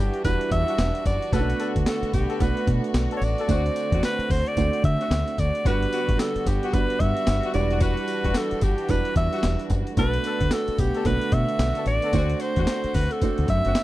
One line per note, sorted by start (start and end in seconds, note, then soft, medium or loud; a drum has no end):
0.00 1.30 E3 medium
0.00 0.25 G3 medium
0.00 1.29 G3 medium
0.00 0.25 D4 medium
0.00 1.30 D4 medium
0.00 0.26 E4 medium
0.00 0.26 F#4 medium
0.00 5.61 F#4 medium
0.00 0.24 G4 medium
0.00 0.26 B4 loud
0.14 closed hi-hat soft
0.24 0.37 E1 medium
0.24 1.08 G3 medium
0.24 1.09 D4 medium
0.24 1.09 E4 medium
0.24 1.09 F#4 medium
0.24 0.50 B4 loud
0.24 1.09 B4 medium
0.24 kick medium
0.24 closed hi-hat medium
0.24 tambourine medium
0.41 closed hi-hat medium
0.51 0.63 E2 loud
0.51 1.02 E5 loud
0.51 kick loud
0.51 closed hi-hat medium
0.68 0.79 G3 medium
0.68 0.79 D4 medium
0.68 0.79 F#4 medium
0.68 closed hi-hat medium
0.78 0.90 E1 loud
0.78 snare loud
0.78 closed hi-hat medium
0.78 tambourine medium
0.95 closed hi-hat medium
1.06 1.17 F#1 medium
1.06 1.35 D5 medium
1.06 kick loud
1.06 closed hi-hat medium
1.06 tambourine medium
1.22 closed hi-hat medium
1.32 1.52 B1 loud
1.32 3.46 D3 medium
1.32 5.61 A3 medium
1.32 2.16 A3 medium
1.32 3.46 B3 medium
1.32 1.49 B3 medium
1.32 2.16 B3 medium
1.32 1.41 C#4 medium
1.32 1.49 D4 medium
1.32 2.17 F#4 medium
1.32 1.49 A4 loud
1.32 1.71 B4 loud
1.32 2.17 B4 medium
1.32 kick loud
1.32 closed hi-hat medium
1.32 tambourine medium
1.40 2.20 D4 medium
1.50 closed hi-hat medium
1.59 1.76 B3 medium
1.59 1.76 D4 medium
1.59 1.76 A4 medium
1.59 closed hi-hat medium
1.59 tambourine medium
1.76 1.84 D2 medium
1.76 kick medium
1.76 closed hi-hat medium
1.86 2.12 A4 medium
1.86 snare loud
1.86 closed hi-hat medium
1.86 tambourine loud
2.02 muted fingered electric bass stroke medium
2.02 closed hi-hat medium
2.13 2.25 B1 medium
2.13 2.43 G4 medium
2.13 kick loud
2.13 closed hi-hat medium
2.13 tambourine medium
2.30 2.41 B3 medium
2.30 2.41 D4 medium
2.30 2.41 A4 medium
2.30 closed hi-hat soft
2.40 2.53 B1 medium
2.40 3.24 A3 medium
2.40 3.24 B3 medium
2.40 3.25 D4 medium
2.40 3.25 F#4 medium
2.40 2.68 B4 medium
2.40 3.25 B4 medium
2.40 kick loud
2.40 closed hi-hat medium
2.40 tambourine medium
2.57 closed hi-hat medium
2.67 2.79 B2 loud
2.67 kick loud
2.67 closed hi-hat medium
2.84 closed hi-hat medium
2.94 3.06 B1 medium
2.94 snare loud
2.94 closed hi-hat medium
2.94 tambourine medium
3.11 3.22 B3 medium
3.11 3.22 D4 medium
3.11 3.22 A4 medium
3.11 closed hi-hat soft
3.17 3.26 C#5 medium
3.21 3.33 A1 medium
3.21 4.04 D5 loud
3.21 closed hi-hat medium
3.21 tambourine medium
3.38 3.49 B3 medium
3.38 3.47 D4 medium
3.38 3.49 A4 medium
3.38 closed hi-hat medium
3.48 3.68 D2 loud
3.48 5.63 D3 medium
3.48 4.32 A3 medium
3.48 3.65 C4 medium
3.48 4.32 C4 medium
3.48 5.63 C4 medium
3.48 3.66 D4 medium
3.48 4.32 D4 medium
3.48 4.32 F#4 medium
3.48 3.66 F#4 loud
3.48 4.33 C5 medium
3.48 kick loud
3.48 closed hi-hat medium
3.48 tambourine medium
3.66 closed hi-hat medium
3.76 closed hi-hat medium
3.76 tambourine medium
3.92 4.00 E2 loud
3.92 4.03 C4 medium
3.92 4.03 D4 medium
3.92 4.04 F#4 medium
3.92 kick medium
3.92 closed hi-hat medium
4.03 4.33 B4 loud
4.03 snare loud
4.03 closed hi-hat medium
4.03 tambourine medium
4.19 muted fingered electric bass stroke medium
4.19 closed hi-hat medium
4.30 4.42 D2 loud
4.30 4.49 C5 loud
4.30 kick loud
4.30 open hi-hat medium
4.30 tambourine medium
4.46 4.85 D5 loud
4.46 closed hi-hat medium
4.57 4.69 D2 medium
4.57 5.41 A3 medium
4.57 5.41 C4 medium
4.57 5.41 D4 medium
4.57 5.41 F#4 medium
4.57 5.41 C5 medium
4.57 kick medium
4.57 closed hi-hat medium
4.57 tambourine medium
4.73 closed hi-hat medium
4.84 4.96 D3 medium
4.84 5.41 E5 loud
4.84 kick loud
4.84 closed hi-hat medium
5.00 5.11 C4 medium
5.00 5.12 D4 medium
5.00 5.12 F#4 medium
5.00 closed hi-hat medium
5.10 5.22 D2 loud
5.10 snare loud
5.10 closed hi-hat medium
5.10 tambourine medium
5.28 closed hi-hat medium
5.38 5.50 D2 medium
5.38 5.69 D5 loud
5.38 kick medium
5.38 closed hi-hat medium
5.38 tambourine medium
5.55 closed hi-hat medium
5.64 5.85 G1 loud
5.64 7.52 D3 medium
5.64 9.93 G3 medium
5.64 5.82 G3 medium
5.64 6.49 G3 medium
5.64 7.52 B3 medium
5.64 5.82 B3 medium
5.64 6.49 B3 medium
5.64 6.49 D4 medium
5.64 9.93 F#4 medium
5.64 5.82 F#4 loud
5.64 6.49 F#4 medium
5.64 6.50 B4 medium
5.64 6.21 B4 loud
5.64 kick loud
5.64 closed hi-hat medium
5.64 tambourine medium
5.83 closed hi-hat medium
5.92 6.09 G3 medium
5.92 6.09 B3 medium
5.92 6.09 F#4 medium
5.92 closed hi-hat medium
5.92 tambourine medium
6.09 6.16 A1 medium
6.09 kick medium
6.09 closed hi-hat medium
6.19 6.49 A4 loud
6.19 snare loud
6.19 closed hi-hat medium
6.19 tambourine loud
6.36 muted fingered electric bass stroke medium
6.36 closed hi-hat medium
6.46 6.58 G1 loud
6.46 6.75 G4 medium
6.46 kick medium
6.46 closed hi-hat medium
6.46 tambourine medium
6.62 6.73 G3 medium
6.62 6.74 B3 medium
6.62 6.74 F#4 medium
6.62 closed hi-hat medium
6.73 6.85 G1 loud
6.73 7.53 G3 medium
6.73 7.55 B3 medium
6.73 7.53 D4 medium
6.73 7.54 F#4 medium
6.73 7.02 B4 loud
6.73 7.54 B4 medium
6.73 kick medium
6.73 closed hi-hat medium
6.73 tambourine medium
6.90 closed hi-hat medium
7.00 7.12 G2 loud
7.00 7.54 E5 loud
7.00 kick loud
7.00 closed hi-hat medium
7.17 closed hi-hat medium
7.27 7.39 G1 loud
7.27 snare loud
7.27 closed hi-hat medium
7.27 tambourine medium
7.43 7.55 G3 medium
7.43 7.55 B3 medium
7.43 7.55 F#4 medium
7.43 closed hi-hat medium
7.54 7.94 E1 loud
7.54 9.95 E3 medium
7.54 8.42 G3 medium
7.54 9.95 D4 medium
7.54 8.42 D4 medium
7.54 8.42 E4 medium
7.54 8.42 F#4 medium
7.54 8.42 B4 loud
7.54 7.84 D5 loud
7.54 closed hi-hat medium
7.54 tambourine medium
7.70 7.79 G3 medium
7.70 7.80 D4 medium
7.70 7.80 F#4 medium
7.70 closed hi-hat medium
7.80 7.98 G3 medium
7.80 7.98 D4 medium
7.80 7.98 F#4 medium
7.80 8.38 B4 loud
7.80 kick loud
7.80 closed hi-hat medium
7.80 tambourine medium
7.97 closed hi-hat medium
8.08 closed hi-hat medium
8.08 tambourine medium
8.24 8.32 E1 medium
8.24 8.36 G3 medium
8.24 8.36 D4 medium
8.24 8.36 F#4 medium
8.24 kick medium
8.24 closed hi-hat medium
8.34 8.65 A4 loud
8.34 snare loud
8.34 closed hi-hat medium
8.34 tambourine loud
8.51 muted fingered electric bass stroke medium
8.51 closed hi-hat medium
8.61 8.74 G1 loud
8.61 8.92 G4 medium
8.61 kick loud
8.61 closed hi-hat medium
8.61 tambourine medium
8.78 closed hi-hat soft
8.89 9.01 E1 medium
8.89 9.73 G3 medium
8.89 9.73 D4 medium
8.89 9.73 E4 medium
8.89 9.73 F#4 medium
8.89 9.16 B4 loud
8.89 9.73 B4 medium
8.89 kick medium
8.89 closed hi-hat medium
8.89 tambourine medium
9.05 closed hi-hat medium
9.16 9.28 E2 loud
9.16 9.67 E5 loud
9.16 kick loud
9.16 closed hi-hat medium
9.32 9.44 G3 medium
9.32 9.44 D4 medium
9.32 9.44 F#4 medium
9.32 closed hi-hat medium
9.43 9.55 E1 loud
9.43 snare loud
9.43 closed hi-hat medium
9.43 tambourine medium
9.59 closed hi-hat medium
9.70 9.82 F#1 loud
9.70 kick medium
9.70 closed hi-hat medium
9.70 tambourine medium
9.87 closed hi-hat medium
9.97 10.17 B1 loud
9.97 13.84 D3 medium
9.97 13.84 A3 medium
9.97 10.81 A3 medium
9.97 12.11 B3 medium
9.97 10.14 B3 loud
9.97 10.81 B3 medium
9.97 10.14 D4 medium
9.97 10.81 D4 medium
9.97 13.84 F#4 medium
9.97 10.82 F#4 medium
9.97 10.14 A4 medium
9.97 10.82 B4 medium
9.97 10.54 B4 loud
9.97 kick loud
9.97 closed hi-hat medium
9.97 tambourine medium
10.14 closed hi-hat medium
10.24 10.41 B3 medium
10.24 10.41 D4 medium
10.24 10.42 A4 medium
10.24 closed hi-hat medium
10.24 tambourine medium
10.41 10.48 D2 medium
10.41 kick medium
10.41 closed hi-hat medium
10.51 10.81 A4 loud
10.51 snare loud
10.51 closed hi-hat medium
10.51 tambourine loud
10.68 muted fingered electric bass stroke medium
10.68 closed hi-hat medium
10.78 10.90 B1 medium
10.78 11.08 G4 medium
10.78 kick loud
10.78 closed hi-hat medium
10.78 tambourine medium
10.94 11.06 B3 medium
10.94 11.06 D4 medium
10.94 11.06 A4 medium
10.94 closed hi-hat soft
11.05 11.17 B1 loud
11.05 11.89 A3 medium
11.05 11.89 B3 medium
11.05 11.90 D4 medium
11.05 11.90 F#4 medium
11.05 11.35 B4 loud
11.05 11.90 B4 medium
11.05 kick medium
11.05 closed hi-hat medium
11.05 tambourine medium
11.21 closed hi-hat medium
11.32 11.44 B2 loud
11.32 11.87 E5 loud
11.32 kick loud
11.32 closed hi-hat medium
11.49 closed hi-hat medium
11.59 11.71 B1 loud
11.59 snare loud
11.59 closed hi-hat medium
11.59 tambourine medium
11.75 11.87 B3 medium
11.75 11.87 D4 medium
11.75 11.87 A4 medium
11.75 closed hi-hat medium
11.86 11.98 A1 medium
11.86 12.42 D5 loud
11.86 closed hi-hat medium
11.86 tambourine medium
12.02 12.14 B3 medium
12.02 12.12 D4 medium
12.02 12.14 A4 medium
12.02 closed hi-hat medium
12.13 12.33 D2 loud
12.13 12.97 A3 medium
12.13 12.30 C4 medium
12.13 12.97 C4 medium
12.13 13.84 C4 medium
12.13 12.30 D4 medium
12.13 12.97 D4 medium
12.13 12.31 F#4 loud
12.13 12.97 F#4 medium
12.13 12.98 C5 medium
12.13 kick loud
12.13 closed hi-hat medium
12.13 tambourine medium
12.30 closed hi-hat medium
12.40 12.97 C5 loud
12.40 closed hi-hat medium
12.40 tambourine medium
12.56 12.64 E2 medium
12.56 12.68 C4 medium
12.56 12.68 D4 medium
12.56 12.68 F#4 medium
12.56 kick medium
12.56 closed hi-hat medium
12.67 snare loud
12.67 closed hi-hat medium
12.67 tambourine medium
12.84 muted fingered electric bass stroke medium
12.84 closed hi-hat soft
12.94 13.07 D2 medium
12.94 13.13 B4 loud
12.94 kick medium
12.94 open hi-hat medium
12.94 tambourine medium
13.11 13.49 A4 medium
13.11 closed hi-hat medium
13.21 13.84 A3 medium
13.21 13.84 C4 medium
13.21 13.84 D4 medium
13.21 13.84 F#4 medium
13.21 13.84 C5 medium
13.21 kick medium
13.21 closed hi-hat medium
13.21 tambourine medium
13.38 13.46 D2 medium
13.38 closed hi-hat medium
13.48 13.61 F#2 loud
13.48 13.84 E5 loud
13.48 kick loud
13.48 closed hi-hat medium
13.65 13.73 F#1 medium
13.65 13.76 C4 medium
13.65 13.76 D4 medium
13.65 13.76 F#4 medium
13.65 closed hi-hat medium
13.75 snare loud
13.75 closed hi-hat medium
13.75 tambourine medium